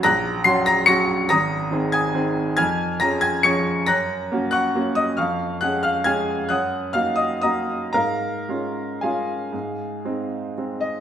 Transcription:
\new Staff \with { instrumentName = "Upright piano" } { \time 3/4 \key des \major \tempo 4 = 137 << { <bes'' ges''' bes'''>4 <c''' c''''>8 <bes'' bes'''>8 <des''' bes''' des''''>4 | <bes'' ees''' bes'''>4. <aes'' ees''' aes'''>4. | <aes'' f''' aes'''>4 <bes'' bes'''>8 <aes'' aes'''>8 <des''' aes''' des''''>4 | <bes'' ges''' bes'''>4. <ges'' des''' ges'''>4 <ees'' ees'''>8 |
<f'' des''' f'''>4 <ges'' ges'''>8 <f'' f'''>8 <aes'' f''' aes'''>4 | <ges'' ees''' ges'''>4 <f'' f'''>8 <ees'' ees'''>8 <ees'' bes'' ees'''>4 | <bes' f'' bes''>2 <aes' f'' aes''>4~ | <aes' f'' aes''>2~ <aes' f'' aes''>8 ees''8 | } \\ { bes,,4 <ges des' ges'>4 <ges des' ges'>4 | aes,,4 <ees c' aes'>4 <ees c' aes'>4 | f,4 <f des' aes'>4 <f des' aes'>4 | ges,4 <bes des' ges'>4 <bes des' ges'>4 |
f,4 <aes des' aes'>4 <aes des' aes'>4 | ges,4 <bes ees' ges'>4 <bes ees' ges'>4 | aes,4 <aes des' f'>4 <aes des' f'>4 | aes,4 <aes c' ees'>4 <aes c' ees'>4 | } >> }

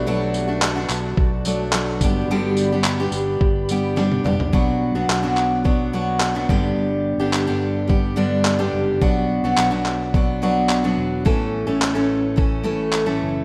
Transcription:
<<
  \new Staff \with { instrumentName = "Ambient pad" } { \time 4/4 \key b \minor \tempo 4 = 107 << { <fis' a''>2.~ <fis' a''>8 <g' b''>8~ | <g' b''>1 | r1 | r1 |
r1 | r1 | } \\ { <b' d''>1~ | <b' d''>1 | r1 | r1 |
r1 | r1 | } >> }
  \new Staff \with { instrumentName = "Steel-string acoustic guitar" } { \time 4/4 \key b \minor <b, fis a d' fis'>8. <a d' fis'>8 <a d' fis'>4~ <a d' fis'>16 <fis a d' fis'>8 <fis a d' fis'>8 <g b d' g'>8 | <g, d g b d' g'>8. <g b d' g'>8 <g b d' g'>4~ <g b d' g'>16 <g b d' g'>8 <g b d' g'>8 <g b d' g'>8 | <b, fis b d' fis'>8. <b, fis b d' fis'>8 <b, fis b d' fis'>8. <fis b d' fis'>8 <b, fis b d' fis'>8. <b, fis b d' fis'>16 <g, d g b d' g'>8~ | <g, d g b d' g'>8. <g, d g b d' g'>8 <g, d g b d' g'>8. <g b d' g'>8 <g, d g b d' g'>8. <g, d g b d' g'>8. |
<b, fis b d' fis'>8. <b, fis b d' fis'>8 <b, fis b d' fis'>8. <fis b d' fis'>8 <b, fis b d' fis'>8. <b, fis b d' fis'>8. | <a, e a cis' a'>8. <a, e a cis' a'>8 <a, e a cis' a'>8. <e a cis' a'>8 <a, e a cis' a'>8. <a, e a cis' a'>8. | }
  \new Staff \with { instrumentName = "Fingered electric bass" } { \clef bass \time 4/4 \key b \minor b,,4. b,,8 b,,4. g,,8 | g,,4. g,,8 g,,4. fis,,8 | b,,8. b,,16 b,,2~ b,,8 g,,8 | g,,8. g,,2~ g,,8. fis,,8 |
b,,8. b,,16 b,,2~ b,,8 e,,8 | a,,8. a,,2~ a,,8. fis,,8 | }
  \new DrumStaff \with { instrumentName = "Drums" } \drummode { \time 4/4 r8 tamb8 hc8 <hc tamb>8 bd8 tamb8 hc8 <bd tamb>8 | r8 tamb8 hc8 tamb8 bd8 tamb8 sn16 tommh16 toml16 tomfh16 | bd4 hc8 hc8 bd4 hc8 bd8 | r4 hc4 bd4 hc4 |
bd4 hc8 hc8 bd4 hc4 | bd4 hc4 bd4 hc4 | }
>>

